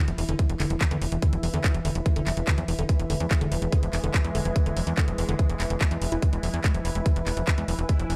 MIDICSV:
0, 0, Header, 1, 6, 480
1, 0, Start_track
1, 0, Key_signature, 4, "major"
1, 0, Tempo, 416667
1, 1410, Time_signature, 4, 2, 24, 8
1, 9399, End_track
2, 0, Start_track
2, 0, Title_t, "Ambient pad"
2, 0, Program_c, 0, 92
2, 0, Note_on_c, 0, 64, 84
2, 0, Note_on_c, 0, 71, 87
2, 480, Note_on_c, 0, 76, 75
2, 8161, Note_on_c, 0, 80, 73
2, 8184, Note_off_c, 0, 76, 0
2, 9399, Note_off_c, 0, 64, 0
2, 9399, Note_off_c, 0, 71, 0
2, 9399, Note_off_c, 0, 80, 0
2, 9399, End_track
3, 0, Start_track
3, 0, Title_t, "Synth texture"
3, 0, Program_c, 1, 99
3, 0, Note_on_c, 1, 52, 84
3, 0, Note_on_c, 1, 64, 83
3, 3330, Note_on_c, 1, 56, 86
3, 3354, Note_off_c, 1, 64, 0
3, 7171, Note_on_c, 1, 64, 85
3, 7194, Note_off_c, 1, 56, 0
3, 9399, Note_off_c, 1, 52, 0
3, 9399, Note_off_c, 1, 64, 0
3, 9399, End_track
4, 0, Start_track
4, 0, Title_t, "Synth arpeggio sound"
4, 0, Program_c, 2, 84
4, 91, Note_on_c, 2, 53, 77
4, 151, Note_off_c, 2, 53, 0
4, 211, Note_on_c, 2, 52, 83
4, 271, Note_off_c, 2, 52, 0
4, 331, Note_on_c, 2, 50, 104
4, 421, Note_off_c, 2, 50, 0
4, 451, Note_on_c, 2, 53, 86
4, 511, Note_off_c, 2, 53, 0
4, 571, Note_on_c, 2, 52, 78
4, 631, Note_off_c, 2, 52, 0
4, 691, Note_on_c, 2, 50, 105
4, 781, Note_off_c, 2, 50, 0
4, 811, Note_on_c, 2, 53, 80
4, 871, Note_off_c, 2, 53, 0
4, 931, Note_on_c, 2, 52, 83
4, 991, Note_off_c, 2, 52, 0
4, 1051, Note_on_c, 2, 50, 101
4, 1141, Note_off_c, 2, 50, 0
4, 1171, Note_on_c, 2, 53, 75
4, 1231, Note_off_c, 2, 53, 0
4, 1291, Note_on_c, 2, 52, 76
4, 1351, Note_off_c, 2, 52, 0
4, 1411, Note_on_c, 2, 50, 94
4, 1501, Note_off_c, 2, 50, 0
4, 1531, Note_on_c, 2, 53, 76
4, 1591, Note_off_c, 2, 53, 0
4, 1651, Note_on_c, 2, 52, 82
4, 1711, Note_off_c, 2, 52, 0
4, 1771, Note_on_c, 2, 50, 100
4, 1861, Note_off_c, 2, 50, 0
4, 2010, Note_on_c, 2, 52, 79
4, 2071, Note_off_c, 2, 52, 0
4, 2131, Note_on_c, 2, 50, 102
4, 2221, Note_off_c, 2, 50, 0
4, 2251, Note_on_c, 2, 53, 80
4, 2311, Note_off_c, 2, 53, 0
4, 2371, Note_on_c, 2, 52, 86
4, 2431, Note_off_c, 2, 52, 0
4, 2491, Note_on_c, 2, 50, 105
4, 2581, Note_off_c, 2, 50, 0
4, 2611, Note_on_c, 2, 53, 78
4, 2671, Note_off_c, 2, 53, 0
4, 2730, Note_on_c, 2, 52, 79
4, 2791, Note_off_c, 2, 52, 0
4, 2851, Note_on_c, 2, 50, 107
4, 2941, Note_off_c, 2, 50, 0
4, 2971, Note_on_c, 2, 53, 77
4, 3031, Note_off_c, 2, 53, 0
4, 3091, Note_on_c, 2, 52, 77
4, 3151, Note_off_c, 2, 52, 0
4, 3211, Note_on_c, 2, 50, 106
4, 3301, Note_off_c, 2, 50, 0
4, 3451, Note_on_c, 2, 52, 78
4, 3511, Note_off_c, 2, 52, 0
4, 3571, Note_on_c, 2, 50, 105
4, 3661, Note_off_c, 2, 50, 0
4, 3691, Note_on_c, 2, 53, 79
4, 3751, Note_off_c, 2, 53, 0
4, 3810, Note_on_c, 2, 52, 85
4, 3871, Note_off_c, 2, 52, 0
4, 3931, Note_on_c, 2, 50, 102
4, 4021, Note_off_c, 2, 50, 0
4, 4050, Note_on_c, 2, 53, 82
4, 4111, Note_off_c, 2, 53, 0
4, 4170, Note_on_c, 2, 52, 79
4, 4231, Note_off_c, 2, 52, 0
4, 4291, Note_on_c, 2, 50, 103
4, 4381, Note_off_c, 2, 50, 0
4, 4410, Note_on_c, 2, 53, 82
4, 4471, Note_off_c, 2, 53, 0
4, 4530, Note_on_c, 2, 52, 77
4, 4591, Note_off_c, 2, 52, 0
4, 4650, Note_on_c, 2, 50, 104
4, 4741, Note_off_c, 2, 50, 0
4, 4771, Note_on_c, 2, 53, 87
4, 4831, Note_off_c, 2, 53, 0
4, 4891, Note_on_c, 2, 52, 76
4, 4951, Note_off_c, 2, 52, 0
4, 5011, Note_on_c, 2, 50, 97
4, 5101, Note_off_c, 2, 50, 0
4, 5131, Note_on_c, 2, 53, 76
4, 5191, Note_off_c, 2, 53, 0
4, 5251, Note_on_c, 2, 52, 79
4, 5311, Note_off_c, 2, 52, 0
4, 5371, Note_on_c, 2, 50, 100
4, 5461, Note_off_c, 2, 50, 0
4, 5491, Note_on_c, 2, 53, 77
4, 5551, Note_off_c, 2, 53, 0
4, 5611, Note_on_c, 2, 52, 80
4, 5671, Note_off_c, 2, 52, 0
4, 5731, Note_on_c, 2, 50, 98
4, 5821, Note_off_c, 2, 50, 0
4, 5851, Note_on_c, 2, 53, 80
4, 5911, Note_off_c, 2, 53, 0
4, 5971, Note_on_c, 2, 52, 81
4, 6031, Note_off_c, 2, 52, 0
4, 6091, Note_on_c, 2, 50, 107
4, 6181, Note_off_c, 2, 50, 0
4, 6211, Note_on_c, 2, 53, 82
4, 6271, Note_off_c, 2, 53, 0
4, 6330, Note_on_c, 2, 52, 78
4, 6391, Note_off_c, 2, 52, 0
4, 6451, Note_on_c, 2, 64, 80
4, 6541, Note_off_c, 2, 64, 0
4, 6571, Note_on_c, 2, 50, 79
4, 6631, Note_off_c, 2, 50, 0
4, 6691, Note_on_c, 2, 56, 84
4, 6727, Note_off_c, 2, 56, 0
4, 6811, Note_on_c, 2, 52, 75
4, 6871, Note_off_c, 2, 52, 0
4, 6931, Note_on_c, 2, 52, 80
4, 6967, Note_off_c, 2, 52, 0
4, 7051, Note_on_c, 2, 64, 99
4, 7087, Note_off_c, 2, 64, 0
4, 7171, Note_on_c, 2, 52, 78
4, 7231, Note_off_c, 2, 52, 0
4, 7291, Note_on_c, 2, 56, 76
4, 7381, Note_off_c, 2, 56, 0
4, 7410, Note_on_c, 2, 53, 81
4, 7471, Note_off_c, 2, 53, 0
4, 7531, Note_on_c, 2, 52, 81
4, 7591, Note_off_c, 2, 52, 0
4, 7650, Note_on_c, 2, 56, 85
4, 7741, Note_off_c, 2, 56, 0
4, 7771, Note_on_c, 2, 53, 76
4, 7831, Note_off_c, 2, 53, 0
4, 7891, Note_on_c, 2, 52, 80
4, 7951, Note_off_c, 2, 52, 0
4, 8010, Note_on_c, 2, 56, 80
4, 8101, Note_off_c, 2, 56, 0
4, 8131, Note_on_c, 2, 53, 83
4, 8191, Note_off_c, 2, 53, 0
4, 8250, Note_on_c, 2, 52, 83
4, 8311, Note_off_c, 2, 52, 0
4, 8371, Note_on_c, 2, 56, 79
4, 8461, Note_off_c, 2, 56, 0
4, 8491, Note_on_c, 2, 53, 75
4, 8551, Note_off_c, 2, 53, 0
4, 8610, Note_on_c, 2, 52, 85
4, 8671, Note_off_c, 2, 52, 0
4, 8730, Note_on_c, 2, 56, 79
4, 8821, Note_off_c, 2, 56, 0
4, 8850, Note_on_c, 2, 53, 74
4, 8911, Note_off_c, 2, 53, 0
4, 8970, Note_on_c, 2, 52, 76
4, 9031, Note_off_c, 2, 52, 0
4, 9090, Note_on_c, 2, 56, 80
4, 9181, Note_off_c, 2, 56, 0
4, 9210, Note_on_c, 2, 53, 74
4, 9271, Note_off_c, 2, 53, 0
4, 9331, Note_on_c, 2, 52, 78
4, 9391, Note_off_c, 2, 52, 0
4, 9399, End_track
5, 0, Start_track
5, 0, Title_t, "Analog synth bass"
5, 0, Program_c, 3, 38
5, 90, Note_on_c, 3, 28, 84
5, 166, Note_off_c, 3, 28, 0
5, 210, Note_on_c, 3, 28, 104
5, 286, Note_off_c, 3, 28, 0
5, 331, Note_on_c, 3, 28, 96
5, 406, Note_off_c, 3, 28, 0
5, 570, Note_on_c, 3, 28, 96
5, 646, Note_off_c, 3, 28, 0
5, 690, Note_on_c, 3, 28, 99
5, 766, Note_off_c, 3, 28, 0
5, 810, Note_on_c, 3, 28, 92
5, 886, Note_off_c, 3, 28, 0
5, 1050, Note_on_c, 3, 40, 89
5, 1126, Note_off_c, 3, 40, 0
5, 1171, Note_on_c, 3, 28, 96
5, 1246, Note_off_c, 3, 28, 0
5, 1290, Note_on_c, 3, 28, 89
5, 1366, Note_off_c, 3, 28, 0
5, 1531, Note_on_c, 3, 28, 89
5, 1606, Note_off_c, 3, 28, 0
5, 1650, Note_on_c, 3, 28, 100
5, 1726, Note_off_c, 3, 28, 0
5, 1770, Note_on_c, 3, 40, 97
5, 1846, Note_off_c, 3, 40, 0
5, 2010, Note_on_c, 3, 28, 88
5, 2086, Note_off_c, 3, 28, 0
5, 2131, Note_on_c, 3, 28, 109
5, 2206, Note_off_c, 3, 28, 0
5, 2251, Note_on_c, 3, 28, 95
5, 2326, Note_off_c, 3, 28, 0
5, 2491, Note_on_c, 3, 28, 92
5, 2566, Note_off_c, 3, 28, 0
5, 2611, Note_on_c, 3, 28, 103
5, 2686, Note_off_c, 3, 28, 0
5, 2731, Note_on_c, 3, 28, 90
5, 2806, Note_off_c, 3, 28, 0
5, 2970, Note_on_c, 3, 40, 90
5, 3046, Note_off_c, 3, 40, 0
5, 3090, Note_on_c, 3, 28, 100
5, 3166, Note_off_c, 3, 28, 0
5, 3211, Note_on_c, 3, 28, 88
5, 3286, Note_off_c, 3, 28, 0
5, 3451, Note_on_c, 3, 28, 89
5, 3526, Note_off_c, 3, 28, 0
5, 3571, Note_on_c, 3, 28, 98
5, 3646, Note_off_c, 3, 28, 0
5, 3691, Note_on_c, 3, 40, 91
5, 3766, Note_off_c, 3, 40, 0
5, 3931, Note_on_c, 3, 28, 83
5, 4006, Note_off_c, 3, 28, 0
5, 4051, Note_on_c, 3, 28, 112
5, 4126, Note_off_c, 3, 28, 0
5, 4171, Note_on_c, 3, 28, 96
5, 4246, Note_off_c, 3, 28, 0
5, 4411, Note_on_c, 3, 28, 94
5, 4486, Note_off_c, 3, 28, 0
5, 4531, Note_on_c, 3, 28, 98
5, 4606, Note_off_c, 3, 28, 0
5, 4651, Note_on_c, 3, 28, 94
5, 4726, Note_off_c, 3, 28, 0
5, 4891, Note_on_c, 3, 40, 89
5, 4966, Note_off_c, 3, 40, 0
5, 5011, Note_on_c, 3, 28, 96
5, 5086, Note_off_c, 3, 28, 0
5, 5131, Note_on_c, 3, 28, 91
5, 5206, Note_off_c, 3, 28, 0
5, 5371, Note_on_c, 3, 28, 86
5, 5446, Note_off_c, 3, 28, 0
5, 5491, Note_on_c, 3, 28, 98
5, 5566, Note_off_c, 3, 28, 0
5, 5611, Note_on_c, 3, 40, 94
5, 5686, Note_off_c, 3, 40, 0
5, 5851, Note_on_c, 3, 28, 85
5, 5926, Note_off_c, 3, 28, 0
5, 5971, Note_on_c, 3, 28, 105
5, 6046, Note_off_c, 3, 28, 0
5, 6091, Note_on_c, 3, 28, 98
5, 6166, Note_off_c, 3, 28, 0
5, 6331, Note_on_c, 3, 28, 91
5, 6406, Note_off_c, 3, 28, 0
5, 6451, Note_on_c, 3, 28, 99
5, 6526, Note_off_c, 3, 28, 0
5, 6571, Note_on_c, 3, 28, 94
5, 6646, Note_off_c, 3, 28, 0
5, 6811, Note_on_c, 3, 40, 90
5, 6886, Note_off_c, 3, 40, 0
5, 6931, Note_on_c, 3, 28, 101
5, 7006, Note_off_c, 3, 28, 0
5, 7051, Note_on_c, 3, 28, 87
5, 7126, Note_off_c, 3, 28, 0
5, 7291, Note_on_c, 3, 28, 87
5, 7366, Note_off_c, 3, 28, 0
5, 7411, Note_on_c, 3, 28, 97
5, 7486, Note_off_c, 3, 28, 0
5, 7530, Note_on_c, 3, 40, 95
5, 7606, Note_off_c, 3, 40, 0
5, 7770, Note_on_c, 3, 28, 85
5, 7846, Note_off_c, 3, 28, 0
5, 7890, Note_on_c, 3, 28, 107
5, 7966, Note_off_c, 3, 28, 0
5, 8011, Note_on_c, 3, 28, 92
5, 8086, Note_off_c, 3, 28, 0
5, 8250, Note_on_c, 3, 28, 94
5, 8326, Note_off_c, 3, 28, 0
5, 8370, Note_on_c, 3, 28, 101
5, 8446, Note_off_c, 3, 28, 0
5, 8490, Note_on_c, 3, 28, 88
5, 8566, Note_off_c, 3, 28, 0
5, 8730, Note_on_c, 3, 40, 93
5, 8806, Note_off_c, 3, 40, 0
5, 8850, Note_on_c, 3, 28, 97
5, 8926, Note_off_c, 3, 28, 0
5, 8970, Note_on_c, 3, 28, 91
5, 9046, Note_off_c, 3, 28, 0
5, 9210, Note_on_c, 3, 28, 87
5, 9286, Note_off_c, 3, 28, 0
5, 9330, Note_on_c, 3, 28, 100
5, 9399, Note_off_c, 3, 28, 0
5, 9399, End_track
6, 0, Start_track
6, 0, Title_t, "Drums"
6, 90, Note_on_c, 9, 42, 55
6, 206, Note_off_c, 9, 42, 0
6, 210, Note_on_c, 9, 46, 107
6, 325, Note_off_c, 9, 46, 0
6, 330, Note_on_c, 9, 42, 57
6, 445, Note_off_c, 9, 42, 0
6, 450, Note_on_c, 9, 36, 119
6, 450, Note_on_c, 9, 42, 83
6, 565, Note_off_c, 9, 42, 0
6, 566, Note_off_c, 9, 36, 0
6, 570, Note_on_c, 9, 42, 55
6, 686, Note_off_c, 9, 42, 0
6, 690, Note_on_c, 9, 39, 67
6, 690, Note_on_c, 9, 46, 111
6, 805, Note_off_c, 9, 39, 0
6, 805, Note_off_c, 9, 46, 0
6, 810, Note_on_c, 9, 42, 56
6, 925, Note_off_c, 9, 42, 0
6, 930, Note_on_c, 9, 36, 114
6, 930, Note_on_c, 9, 39, 127
6, 930, Note_on_c, 9, 42, 83
6, 1045, Note_off_c, 9, 39, 0
6, 1045, Note_off_c, 9, 42, 0
6, 1046, Note_off_c, 9, 36, 0
6, 1050, Note_on_c, 9, 42, 56
6, 1165, Note_off_c, 9, 42, 0
6, 1170, Note_on_c, 9, 46, 103
6, 1285, Note_off_c, 9, 46, 0
6, 1290, Note_on_c, 9, 42, 56
6, 1405, Note_off_c, 9, 42, 0
6, 1410, Note_on_c, 9, 36, 122
6, 1410, Note_on_c, 9, 42, 82
6, 1525, Note_off_c, 9, 42, 0
6, 1526, Note_off_c, 9, 36, 0
6, 1530, Note_on_c, 9, 42, 55
6, 1645, Note_off_c, 9, 42, 0
6, 1650, Note_on_c, 9, 46, 114
6, 1765, Note_off_c, 9, 46, 0
6, 1770, Note_on_c, 9, 42, 53
6, 1885, Note_off_c, 9, 42, 0
6, 1890, Note_on_c, 9, 36, 127
6, 1890, Note_on_c, 9, 39, 126
6, 1890, Note_on_c, 9, 42, 77
6, 2006, Note_off_c, 9, 36, 0
6, 2006, Note_off_c, 9, 39, 0
6, 2006, Note_off_c, 9, 42, 0
6, 2010, Note_on_c, 9, 42, 54
6, 2125, Note_off_c, 9, 42, 0
6, 2130, Note_on_c, 9, 46, 108
6, 2245, Note_off_c, 9, 46, 0
6, 2250, Note_on_c, 9, 42, 56
6, 2366, Note_off_c, 9, 42, 0
6, 2370, Note_on_c, 9, 36, 123
6, 2370, Note_on_c, 9, 42, 78
6, 2486, Note_off_c, 9, 36, 0
6, 2486, Note_off_c, 9, 42, 0
6, 2490, Note_on_c, 9, 42, 52
6, 2606, Note_off_c, 9, 42, 0
6, 2610, Note_on_c, 9, 39, 66
6, 2610, Note_on_c, 9, 46, 111
6, 2726, Note_off_c, 9, 39, 0
6, 2726, Note_off_c, 9, 46, 0
6, 2730, Note_on_c, 9, 42, 55
6, 2845, Note_off_c, 9, 42, 0
6, 2850, Note_on_c, 9, 39, 127
6, 2850, Note_on_c, 9, 42, 85
6, 2851, Note_on_c, 9, 36, 123
6, 2966, Note_off_c, 9, 36, 0
6, 2966, Note_off_c, 9, 39, 0
6, 2966, Note_off_c, 9, 42, 0
6, 2970, Note_on_c, 9, 42, 55
6, 3086, Note_off_c, 9, 42, 0
6, 3090, Note_on_c, 9, 46, 105
6, 3206, Note_off_c, 9, 46, 0
6, 3211, Note_on_c, 9, 42, 56
6, 3326, Note_off_c, 9, 42, 0
6, 3331, Note_on_c, 9, 36, 122
6, 3331, Note_on_c, 9, 42, 81
6, 3446, Note_off_c, 9, 36, 0
6, 3446, Note_off_c, 9, 42, 0
6, 3451, Note_on_c, 9, 42, 51
6, 3566, Note_off_c, 9, 42, 0
6, 3570, Note_on_c, 9, 46, 115
6, 3686, Note_off_c, 9, 46, 0
6, 3691, Note_on_c, 9, 42, 54
6, 3806, Note_off_c, 9, 42, 0
6, 3810, Note_on_c, 9, 36, 127
6, 3811, Note_on_c, 9, 39, 120
6, 3811, Note_on_c, 9, 42, 75
6, 3926, Note_off_c, 9, 36, 0
6, 3926, Note_off_c, 9, 39, 0
6, 3926, Note_off_c, 9, 42, 0
6, 3931, Note_on_c, 9, 42, 51
6, 4046, Note_off_c, 9, 42, 0
6, 4051, Note_on_c, 9, 46, 113
6, 4166, Note_off_c, 9, 46, 0
6, 4171, Note_on_c, 9, 42, 52
6, 4286, Note_off_c, 9, 42, 0
6, 4291, Note_on_c, 9, 36, 127
6, 4291, Note_on_c, 9, 42, 79
6, 4406, Note_off_c, 9, 36, 0
6, 4406, Note_off_c, 9, 42, 0
6, 4411, Note_on_c, 9, 42, 51
6, 4526, Note_off_c, 9, 42, 0
6, 4531, Note_on_c, 9, 39, 62
6, 4531, Note_on_c, 9, 46, 118
6, 4646, Note_off_c, 9, 39, 0
6, 4646, Note_off_c, 9, 46, 0
6, 4651, Note_on_c, 9, 42, 53
6, 4766, Note_off_c, 9, 42, 0
6, 4771, Note_on_c, 9, 36, 126
6, 4771, Note_on_c, 9, 39, 125
6, 4771, Note_on_c, 9, 42, 79
6, 4886, Note_off_c, 9, 36, 0
6, 4886, Note_off_c, 9, 39, 0
6, 4886, Note_off_c, 9, 42, 0
6, 4890, Note_on_c, 9, 42, 54
6, 5006, Note_off_c, 9, 42, 0
6, 5010, Note_on_c, 9, 46, 109
6, 5126, Note_off_c, 9, 46, 0
6, 5131, Note_on_c, 9, 42, 53
6, 5246, Note_off_c, 9, 42, 0
6, 5250, Note_on_c, 9, 36, 127
6, 5250, Note_on_c, 9, 42, 77
6, 5366, Note_off_c, 9, 36, 0
6, 5366, Note_off_c, 9, 42, 0
6, 5370, Note_on_c, 9, 42, 50
6, 5486, Note_off_c, 9, 42, 0
6, 5490, Note_on_c, 9, 46, 114
6, 5606, Note_off_c, 9, 46, 0
6, 5610, Note_on_c, 9, 42, 52
6, 5726, Note_off_c, 9, 42, 0
6, 5731, Note_on_c, 9, 36, 127
6, 5731, Note_on_c, 9, 39, 115
6, 5731, Note_on_c, 9, 42, 74
6, 5846, Note_off_c, 9, 36, 0
6, 5846, Note_off_c, 9, 39, 0
6, 5846, Note_off_c, 9, 42, 0
6, 5851, Note_on_c, 9, 42, 51
6, 5966, Note_off_c, 9, 42, 0
6, 5971, Note_on_c, 9, 46, 110
6, 6086, Note_off_c, 9, 46, 0
6, 6091, Note_on_c, 9, 42, 52
6, 6206, Note_off_c, 9, 42, 0
6, 6211, Note_on_c, 9, 36, 127
6, 6211, Note_on_c, 9, 42, 74
6, 6326, Note_off_c, 9, 36, 0
6, 6326, Note_off_c, 9, 42, 0
6, 6331, Note_on_c, 9, 42, 49
6, 6446, Note_off_c, 9, 42, 0
6, 6451, Note_on_c, 9, 39, 64
6, 6451, Note_on_c, 9, 46, 116
6, 6566, Note_off_c, 9, 39, 0
6, 6566, Note_off_c, 9, 46, 0
6, 6570, Note_on_c, 9, 42, 53
6, 6686, Note_off_c, 9, 42, 0
6, 6690, Note_on_c, 9, 36, 123
6, 6690, Note_on_c, 9, 39, 122
6, 6690, Note_on_c, 9, 42, 76
6, 6805, Note_off_c, 9, 39, 0
6, 6805, Note_off_c, 9, 42, 0
6, 6806, Note_off_c, 9, 36, 0
6, 6810, Note_on_c, 9, 42, 52
6, 6925, Note_off_c, 9, 42, 0
6, 6930, Note_on_c, 9, 46, 113
6, 7046, Note_off_c, 9, 46, 0
6, 7050, Note_on_c, 9, 42, 51
6, 7166, Note_off_c, 9, 42, 0
6, 7170, Note_on_c, 9, 36, 123
6, 7171, Note_on_c, 9, 42, 79
6, 7286, Note_off_c, 9, 36, 0
6, 7286, Note_off_c, 9, 42, 0
6, 7291, Note_on_c, 9, 42, 47
6, 7406, Note_off_c, 9, 42, 0
6, 7410, Note_on_c, 9, 46, 111
6, 7526, Note_off_c, 9, 46, 0
6, 7531, Note_on_c, 9, 42, 52
6, 7646, Note_off_c, 9, 42, 0
6, 7650, Note_on_c, 9, 36, 124
6, 7650, Note_on_c, 9, 39, 113
6, 7650, Note_on_c, 9, 42, 77
6, 7766, Note_off_c, 9, 36, 0
6, 7766, Note_off_c, 9, 39, 0
6, 7766, Note_off_c, 9, 42, 0
6, 7770, Note_on_c, 9, 42, 54
6, 7886, Note_off_c, 9, 42, 0
6, 7890, Note_on_c, 9, 46, 103
6, 8005, Note_off_c, 9, 46, 0
6, 8010, Note_on_c, 9, 42, 50
6, 8126, Note_off_c, 9, 42, 0
6, 8130, Note_on_c, 9, 36, 122
6, 8130, Note_on_c, 9, 42, 80
6, 8246, Note_off_c, 9, 36, 0
6, 8246, Note_off_c, 9, 42, 0
6, 8250, Note_on_c, 9, 42, 50
6, 8366, Note_off_c, 9, 42, 0
6, 8370, Note_on_c, 9, 39, 60
6, 8370, Note_on_c, 9, 46, 112
6, 8485, Note_off_c, 9, 39, 0
6, 8485, Note_off_c, 9, 46, 0
6, 8490, Note_on_c, 9, 42, 53
6, 8605, Note_off_c, 9, 42, 0
6, 8610, Note_on_c, 9, 36, 117
6, 8610, Note_on_c, 9, 39, 118
6, 8610, Note_on_c, 9, 42, 79
6, 8725, Note_off_c, 9, 36, 0
6, 8725, Note_off_c, 9, 39, 0
6, 8725, Note_off_c, 9, 42, 0
6, 8730, Note_on_c, 9, 42, 50
6, 8846, Note_off_c, 9, 42, 0
6, 8850, Note_on_c, 9, 46, 103
6, 8966, Note_off_c, 9, 46, 0
6, 8971, Note_on_c, 9, 42, 51
6, 9086, Note_off_c, 9, 42, 0
6, 9090, Note_on_c, 9, 36, 111
6, 9091, Note_on_c, 9, 42, 82
6, 9206, Note_off_c, 9, 36, 0
6, 9206, Note_off_c, 9, 42, 0
6, 9211, Note_on_c, 9, 42, 51
6, 9326, Note_off_c, 9, 42, 0
6, 9331, Note_on_c, 9, 46, 106
6, 9399, Note_off_c, 9, 46, 0
6, 9399, End_track
0, 0, End_of_file